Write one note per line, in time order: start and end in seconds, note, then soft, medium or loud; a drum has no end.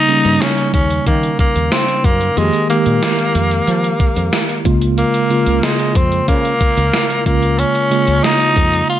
0.00 0.08 C#3 medium
0.00 0.08 G3 medium
0.00 0.09 A#3 medium
0.00 0.43 D#4 loud
0.00 2.39 D#4 medium
0.08 1.01 C#3 medium
0.08 1.01 G3 medium
0.08 1.01 A#3 medium
0.08 1.01 C#4 medium
0.08 closed hi-hat medium
0.25 0.37 G2 medium
0.25 closed hi-hat soft
0.42 0.74 C#4 medium
0.42 snare loud
0.42 closed hi-hat medium
0.58 closed hi-hat soft
0.74 0.98 D#2 medium
0.74 1.04 C#4 medium
0.74 kick medium
0.74 closed hi-hat medium
0.90 closed hi-hat medium
1.07 1.31 D#3 medium
1.07 1.37 A#3 medium
1.07 kick medium
1.07 closed hi-hat medium
1.23 closed hi-hat soft
1.39 1.74 A#3 medium
1.39 kick medium
1.39 closed hi-hat medium
1.56 1.68 D#2 medium
1.56 closed hi-hat soft
1.72 2.06 C4 medium
1.72 snare loud
1.72 closed hi-hat medium
1.88 closed hi-hat soft
2.04 2.29 F#2 medium
2.04 2.39 A#3 medium
2.04 kick medium
2.04 closed hi-hat medium
2.21 closed hi-hat soft
2.37 2.49 F2 loud
2.37 2.60 D#3 medium
2.37 2.60 G#3 medium
2.37 2.69 G#3 medium
2.37 2.60 A#3 medium
2.37 2.60 G4 medium
2.37 closed hi-hat medium
2.53 closed hi-hat soft
2.69 3.62 D#3 medium
2.69 3.62 G#3 medium
2.69 4.61 A#3 medium
2.69 3.62 A#3 medium
2.69 3.62 G4 medium
2.69 closed hi-hat medium
2.86 2.98 A#2 medium
2.86 closed hi-hat soft
3.03 snare loud
3.03 closed hi-hat medium
3.19 closed hi-hat soft
3.35 3.59 F2 medium
3.35 closed hi-hat medium
3.51 closed hi-hat medium
3.67 3.92 F3 medium
3.67 closed hi-hat medium
3.84 closed hi-hat soft
4.00 kick medium
4.00 closed hi-hat medium
4.16 4.29 F2 medium
4.16 closed hi-hat soft
4.33 snare loud
4.33 closed hi-hat medium
4.49 closed hi-hat soft
4.65 5.02 C#2 medium
4.65 5.17 C#3 medium
4.65 5.17 G#3 medium
4.65 5.18 A#3 medium
4.65 5.18 F4 medium
4.65 kick loud
4.65 closed hi-hat medium
4.82 closed hi-hat soft
4.98 5.65 A#3 medium
4.98 closed hi-hat medium
5.14 closed hi-hat soft
5.30 6.23 C#3 medium
5.30 6.23 G#3 medium
5.30 6.23 A#3 medium
5.30 6.23 F4 medium
5.30 closed hi-hat medium
5.46 5.59 C#2 medium
5.46 closed hi-hat soft
5.63 5.98 G#3 medium
5.63 snare loud
5.63 closed hi-hat medium
5.79 closed hi-hat soft
5.95 6.20 F2 medium
5.95 6.28 C4 medium
5.95 kick medium
5.95 closed hi-hat medium
6.12 closed hi-hat medium
6.28 6.53 C#3 medium
6.28 7.22 A#3 medium
6.28 kick medium
6.28 closed hi-hat medium
6.45 closed hi-hat soft
6.61 kick medium
6.61 closed hi-hat medium
6.77 6.90 C#2 medium
6.77 closed hi-hat medium
6.93 snare loud
6.93 closed hi-hat medium
7.10 closed hi-hat soft
7.25 7.63 C#2 medium
7.25 7.78 C#3 medium
7.25 7.78 G#3 medium
7.25 7.78 A#3 medium
7.25 7.60 A#3 medium
7.25 7.79 F4 medium
7.25 kick medium
7.25 closed hi-hat medium
7.42 closed hi-hat soft
7.59 8.26 C#4 loud
7.59 closed hi-hat medium
7.75 closed hi-hat soft
7.91 8.83 C#3 medium
7.91 8.84 G#3 medium
7.91 8.84 A#3 medium
7.91 8.84 F4 medium
7.91 closed hi-hat medium
8.07 8.20 C#2 medium
8.07 closed hi-hat soft
8.24 8.89 D#4 medium
8.24 snare loud
8.24 closed hi-hat medium
8.40 closed hi-hat soft
8.56 8.81 F2 medium
8.56 kick medium
8.56 closed hi-hat medium
8.73 closed hi-hat medium
8.89 9.00 F4 medium